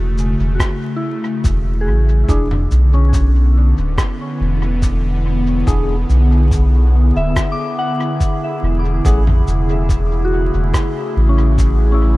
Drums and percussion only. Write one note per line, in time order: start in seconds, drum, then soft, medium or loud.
0.18 shaker soft
0.60 kick loud
0.60 cross-stick medium
0.60 shaker medium
1.44 kick loud
1.44 shaker medium
2.29 kick loud
2.29 shaker medium
2.51 mid tom medium
2.71 shaker soft
3.13 kick loud
3.13 shaker medium
3.98 kick loud
3.98 cross-stick medium
3.98 shaker medium
4.82 kick loud
4.82 shaker medium
5.67 kick loud
5.67 shaker soft
6.10 shaker soft
6.51 kick loud
6.51 shaker soft
7.36 kick loud
7.36 cross-stick medium
7.36 shaker medium
8.20 kick loud
8.20 shaker soft
9.05 kick loud
9.05 shaker soft
9.27 mid tom medium
9.48 shaker soft
9.89 kick loud
9.89 shaker soft
10.74 kick loud
10.74 cross-stick medium
10.74 shaker medium
11.58 kick loud
11.58 shaker medium